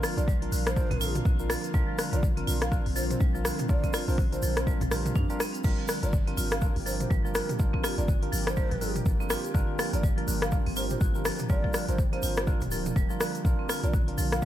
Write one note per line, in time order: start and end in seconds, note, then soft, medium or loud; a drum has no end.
0.00 5.60 D3 medium
0.00 0.17 F3 loud
0.00 1.70 A#3 medium
0.00 0.14 D4 medium
0.00 0.14 F4 medium
0.00 5.60 F4 medium
0.00 0.14 A#4 loud
0.00 cross-stick medium
0.00 open hi-hat medium
0.00 shaker medium
0.17 0.46 A#1 medium
0.17 0.27 D4 medium
0.17 0.27 F4 medium
0.17 0.27 A#4 loud
0.17 0.29 D5 medium
0.17 closed hi-hat medium
0.17 shaker soft
0.28 0.41 G3 medium
0.28 kick loud
0.28 shaker soft
0.42 0.51 F3 medium
0.42 0.74 D4 medium
0.42 0.74 F4 medium
0.42 0.74 A#4 loud
0.42 closed hi-hat soft
0.52 0.82 A#1 medium
0.52 0.60 D3 medium
0.52 open hi-hat medium
0.52 shaker medium
0.66 1.15 C5 medium
0.66 cross-stick medium
0.66 closed hi-hat medium
0.66 shaker soft
0.76 0.90 D4 medium
0.76 0.90 F4 medium
0.76 0.90 A#4 loud
0.76 kick loud
0.76 shaker soft
0.91 1.19 A#1 medium
0.91 0.96 C4 medium
0.91 closed hi-hat soft
0.91 mid tom medium
1.01 1.36 D4 medium
1.01 1.36 F4 medium
1.01 1.09 F4 loud
1.01 1.36 A#4 medium
1.01 open hi-hat medium
1.01 shaker medium
1.15 closed hi-hat medium
1.15 mid tom medium
1.15 shaker soft
1.25 1.55 A#1 loud
1.25 1.39 D3 medium
1.25 kick loud
1.25 shaker soft
1.39 1.72 D4 medium
1.39 1.72 F4 medium
1.39 1.72 A#4 medium
1.39 shaker soft
1.50 1.63 F3 loud
1.50 cross-stick medium
1.50 open hi-hat medium
1.50 shaker medium
1.64 closed hi-hat medium
1.64 shaker soft
1.74 1.83 A#1 loud
1.74 1.87 G3 medium
1.74 5.60 C4 medium
1.74 2.09 D4 loud
1.74 2.09 F4 medium
1.74 2.09 A#4 loud
1.74 kick loud
1.74 shaker medium
1.88 1.98 F3 medium
1.98 2.06 D3 medium
1.98 cross-stick medium
1.98 open hi-hat medium
1.98 shaker medium
2.13 2.41 A#1 loud
2.13 2.23 D4 medium
2.13 2.23 F4 medium
2.13 2.23 A#4 medium
2.13 2.24 D5 medium
2.13 closed hi-hat medium
2.13 shaker soft
2.23 kick loud
2.23 shaker soft
2.37 2.43 C4 medium
2.37 2.69 D4 medium
2.37 2.69 F4 medium
2.37 2.69 A#4 loud
2.37 closed hi-hat soft
2.47 2.77 A#1 medium
2.47 2.55 F4 loud
2.47 open hi-hat medium
2.47 shaker medium
2.61 2.73 F5 medium
2.61 cross-stick medium
2.61 closed hi-hat medium
2.61 shaker soft
2.72 2.85 D3 medium
2.72 2.86 D4 medium
2.72 2.86 F4 medium
2.72 2.86 A#4 loud
2.72 kick loud
2.72 shaker medium
2.86 3.14 A#1 medium
2.86 open hi-hat medium
2.96 3.10 F3 loud
2.96 3.31 D4 medium
2.96 3.31 F4 medium
2.96 3.31 A#4 medium
2.96 3.05 C5 medium
2.96 open hi-hat medium
2.96 shaker medium
3.10 3.17 C5 medium
3.10 closed hi-hat medium
3.10 mid tom medium
3.10 shaker soft
3.20 3.50 A#1 medium
3.20 3.33 G3 medium
3.20 kick loud
3.20 shaker soft
3.35 3.44 F3 medium
3.35 3.67 D4 medium
3.35 3.67 F4 medium
3.35 3.67 A#4 medium
3.35 shaker soft
3.45 3.53 D3 medium
3.45 cross-stick medium
3.45 open hi-hat medium
3.45 shaker loud
3.59 closed hi-hat medium
3.59 mid tom loud
3.59 shaker soft
3.69 3.78 A#1 loud
3.69 4.05 D4 medium
3.69 4.05 F4 medium
3.69 4.05 A#4 loud
3.69 4.05 D5 medium
3.69 kick loud
3.69 shaker soft
3.84 3.89 C4 medium
3.84 kick medium
3.84 closed hi-hat soft
3.84 shaker soft
3.93 4.01 F4 loud
3.93 cross-stick medium
3.93 open hi-hat medium
3.93 shaker medium
4.08 4.36 A#1 medium
4.08 4.18 D4 medium
4.08 4.18 F4 medium
4.08 4.18 A#4 medium
4.08 4.19 C5 medium
4.08 open hi-hat medium
4.08 shaker soft
4.18 4.32 D3 medium
4.18 kick loud
4.18 shaker soft
4.32 4.64 D4 medium
4.32 4.64 F4 medium
4.32 4.64 A#4 loud
4.32 4.67 C5 medium
4.32 closed hi-hat soft
4.32 shaker soft
4.42 4.72 A#1 medium
4.42 4.56 F3 loud
4.42 open hi-hat medium
4.42 shaker medium
4.57 cross-stick medium
4.57 closed hi-hat medium
4.57 shaker soft
4.67 4.80 G3 medium
4.67 4.81 D4 medium
4.67 4.81 F4 medium
4.67 4.81 A#4 loud
4.67 kick loud
4.67 shaker soft
4.81 5.09 A#1 medium
4.81 4.91 F3 medium
4.81 closed hi-hat soft
4.81 mid tom medium
4.81 shaker soft
4.91 5.27 D4 medium
4.91 5.27 F4 medium
4.91 5.05 G4 medium
4.91 5.27 A#4 loud
4.91 cross-stick medium
4.91 open hi-hat medium
4.91 shaker medium
5.06 closed hi-hat medium
5.06 mid tom loud
5.06 shaker soft
5.15 5.24 F2 loud
5.15 5.23 D4 loud
5.15 kick loud
5.15 shaker soft
5.30 5.39 G3 medium
5.30 5.40 D4 loud
5.30 5.40 F4 medium
5.30 5.40 A#4 loud
5.30 closed hi-hat soft
5.30 shaker soft
5.40 5.54 C4 medium
5.40 cross-stick medium
5.40 open hi-hat medium
5.40 shaker medium
5.54 closed hi-hat medium
5.54 shaker soft
5.64 5.73 G1 loud
5.64 13.41 F3 medium
5.64 5.77 G3 medium
5.64 14.45 A#3 medium
5.64 6.00 D4 medium
5.64 6.00 F4 medium
5.64 13.41 G4 medium
5.64 6.00 A#4 loud
5.64 kick loud
5.64 crash medium
5.64 shaker medium
5.79 5.88 F3 medium
5.88 5.97 D3 medium
5.88 cross-stick medium
5.88 open hi-hat medium
5.88 shaker loud
6.03 6.31 G1 medium
6.03 6.13 D4 medium
6.03 6.13 F4 medium
6.03 6.13 A#4 medium
6.03 6.15 D5 medium
6.03 closed hi-hat medium
6.03 shaker soft
6.13 kick loud
6.13 shaker medium
6.27 6.33 C4 medium
6.27 6.59 D4 medium
6.27 6.60 F4 medium
6.27 6.59 A#4 loud
6.27 closed hi-hat soft
6.37 6.67 G1 medium
6.37 6.45 F4 loud
6.37 open hi-hat loud
6.37 shaker loud
6.52 6.63 F5 medium
6.52 cross-stick loud
6.52 closed hi-hat medium
6.52 shaker soft
6.61 6.75 D3 medium
6.61 6.76 D4 medium
6.61 6.76 F4 medium
6.61 6.76 A#4 loud
6.61 kick loud
6.61 shaker medium
6.76 7.04 G1 medium
6.76 open hi-hat medium
6.86 7.00 F3 loud
6.86 7.22 D4 medium
6.86 7.22 F4 medium
6.86 7.22 A#4 medium
6.86 6.96 C5 medium
6.86 open hi-hat loud
6.86 shaker medium
7.00 7.07 C5 medium
7.00 closed hi-hat medium
7.00 mid tom medium
7.00 shaker soft
7.10 7.41 G1 loud
7.10 7.23 G3 medium
7.10 kick loud
7.10 shaker medium
7.25 7.34 F3 medium
7.25 7.57 D4 medium
7.25 7.57 F4 medium
7.25 7.57 A#4 medium
7.25 shaker soft
7.35 7.43 D3 medium
7.35 7.51 A#4 medium
7.35 cross-stick medium
7.35 open hi-hat loud
7.35 shaker medium
7.49 closed hi-hat medium
7.49 mid tom medium
7.49 shaker soft
7.59 7.68 G1 loud
7.59 7.95 D4 medium
7.59 7.95 F4 medium
7.59 7.95 A#4 loud
7.59 kick loud
7.59 shaker medium
7.73 7.79 C4 medium
7.73 kick medium
7.83 7.91 F4 loud
7.83 cross-stick medium
7.83 open hi-hat loud
7.83 shaker loud
7.98 8.26 G1 loud
7.98 8.08 D4 medium
7.98 8.08 F4 medium
7.98 8.08 A#4 medium
7.98 8.10 D5 medium
7.98 closed hi-hat medium
7.98 shaker soft
8.08 8.22 D3 medium
8.08 kick loud
8.08 shaker medium
8.23 8.55 D4 medium
8.23 8.55 F4 medium
8.23 8.55 A#4 loud
8.23 closed hi-hat soft
8.32 8.63 G1 medium
8.32 8.46 F3 loud
8.32 open hi-hat loud
8.32 shaker loud
8.47 8.96 C5 medium
8.47 cross-stick loud
8.47 closed hi-hat medium
8.47 shaker soft
8.57 8.70 G3 medium
8.57 8.71 D4 medium
8.57 8.71 F4 medium
8.57 8.71 A#4 loud
8.57 kick loud
8.57 shaker medium
8.71 9.00 G1 medium
8.71 8.81 F3 medium
8.71 closed hi-hat soft
8.71 mid tom medium
8.81 8.89 D3 medium
8.81 9.17 D4 medium
8.81 9.17 F4 medium
8.81 9.17 A#4 medium
8.81 open hi-hat loud
8.81 shaker medium
8.96 closed hi-hat medium
8.96 mid tom medium
8.96 shaker soft
9.06 9.36 G1 medium
9.06 kick loud
9.06 shaker medium
9.20 9.26 C4 medium
9.20 9.52 D4 medium
9.20 9.52 F4 medium
9.20 9.52 A#4 medium
9.20 shaker soft
9.30 9.38 F4 loud
9.30 cross-stick loud
9.30 open hi-hat medium
9.30 shaker loud
9.44 closed hi-hat medium
9.44 shaker soft
9.54 9.63 G1 loud
9.54 9.68 D3 medium
9.54 9.90 D4 loud
9.54 9.90 F4 medium
9.54 9.90 A#4 loud
9.54 kick loud
9.54 shaker medium
9.79 9.93 F3 loud
9.79 cross-stick medium
9.79 open hi-hat medium
9.79 shaker medium
9.93 10.22 G1 loud
9.93 10.03 D4 medium
9.93 10.03 F4 medium
9.93 10.03 A#4 medium
9.93 10.05 D5 medium
9.93 closed hi-hat medium
9.93 shaker soft
10.03 10.16 G3 medium
10.03 kick loud
10.03 shaker medium
10.18 10.27 F3 medium
10.18 10.50 D4 medium
10.18 10.50 F4 medium
10.18 10.50 A#4 loud
10.18 closed hi-hat soft
10.28 10.58 G1 medium
10.28 10.36 D3 medium
10.28 open hi-hat medium
10.28 shaker medium
10.42 10.54 F5 medium
10.42 cross-stick loud
10.42 closed hi-hat medium
10.42 shaker soft
10.52 10.66 D4 medium
10.52 10.66 F4 medium
10.52 10.66 A#4 loud
10.52 kick loud
10.52 shaker medium
10.66 10.95 G1 medium
10.66 10.72 C4 medium
10.66 open hi-hat medium
10.76 11.12 D4 medium
10.76 11.12 F4 medium
10.76 10.84 F4 loud
10.76 11.12 A#4 medium
10.76 10.86 C5 medium
10.76 open hi-hat medium
10.76 shaker medium
10.90 10.97 C5 medium
10.90 closed hi-hat medium
10.90 mid tom medium
10.90 shaker soft
11.01 11.31 G1 loud
11.01 11.15 D3 medium
11.01 kick loud
11.01 shaker medium
11.15 11.47 D4 medium
11.15 11.47 F4 medium
11.15 11.47 A#4 medium
11.15 shaker soft
11.25 11.39 F3 loud
11.25 cross-stick loud
11.25 open hi-hat loud
11.25 shaker loud
11.39 closed hi-hat medium
11.39 mid tom medium
11.39 shaker soft
11.49 11.59 G1 loud
11.49 11.63 G3 medium
11.49 11.85 D4 medium
11.49 11.85 F4 medium
11.49 11.85 A#4 loud
11.49 11.85 D5 loud
11.49 kick loud
11.49 shaker soft
11.64 11.74 F3 medium
11.64 kick medium
11.73 11.82 D3 medium
11.73 cross-stick medium
11.73 open hi-hat medium
11.73 shaker medium
11.88 12.17 G1 loud
11.88 11.98 D4 medium
11.88 11.98 F4 medium
11.88 11.98 A#4 medium
11.88 12.00 C5 medium
11.88 closed hi-hat medium
11.88 shaker soft
11.98 kick loud
11.98 shaker medium
12.13 12.18 C4 medium
12.13 12.45 D4 medium
12.13 12.45 F4 medium
12.13 12.45 A#4 loud
12.13 12.47 C5 medium
12.13 closed hi-hat soft
12.22 12.53 G1 medium
12.22 12.31 F4 loud
12.22 open hi-hat medium
12.22 shaker loud
12.36 cross-stick loud
12.36 closed hi-hat medium
12.36 shaker soft
12.47 12.61 D3 medium
12.47 12.61 D4 medium
12.47 12.61 F4 medium
12.47 12.61 A#4 loud
12.47 kick loud
12.47 shaker medium
12.61 12.90 D1 medium
12.61 closed hi-hat soft
12.61 mid tom medium
12.61 shaker soft
12.71 12.85 F3 loud
12.71 13.07 D4 medium
12.71 13.07 F4 medium
12.71 13.07 A#4 medium
12.71 open hi-hat medium
12.71 shaker medium
12.86 closed hi-hat medium
12.86 mid tom medium
12.86 shaker soft
12.96 13.05 D1 medium
12.96 13.09 G3 medium
12.96 kick loud
12.96 shaker medium
13.10 13.20 F3 medium
13.10 13.42 D4 medium
13.10 13.42 F4 medium
13.10 13.42 A#4 medium
13.10 shaker soft
13.20 13.28 D3 medium
13.20 cross-stick loud
13.20 open hi-hat medium
13.20 shaker loud
13.35 closed hi-hat medium
13.35 shaker soft
13.45 13.54 A#1 loud
13.45 14.45 D3 medium
13.45 13.80 D4 medium
13.45 14.45 F4 medium
13.45 13.80 F4 medium
13.45 13.80 A#4 loud
13.45 kick loud
13.45 shaker medium
13.59 13.65 C4 medium
13.69 13.77 F4 loud
13.69 cross-stick medium
13.69 open hi-hat medium
13.69 shaker medium
13.83 14.12 A#1 loud
13.83 13.93 D4 medium
13.83 13.93 F4 medium
13.83 13.93 A#4 loud
13.83 13.95 D5 medium
13.83 closed hi-hat medium
13.83 shaker soft
13.94 14.07 D3 medium
13.94 kick loud
13.94 shaker soft
14.08 14.40 D4 medium
14.08 14.40 F4 medium
14.08 14.40 A#4 loud
14.08 closed hi-hat soft
14.18 14.45 A#1 medium
14.18 14.32 F3 loud
14.18 open hi-hat medium
14.18 shaker medium
14.32 14.44 F5 medium
14.32 cross-stick medium
14.32 closed hi-hat medium
14.32 shaker soft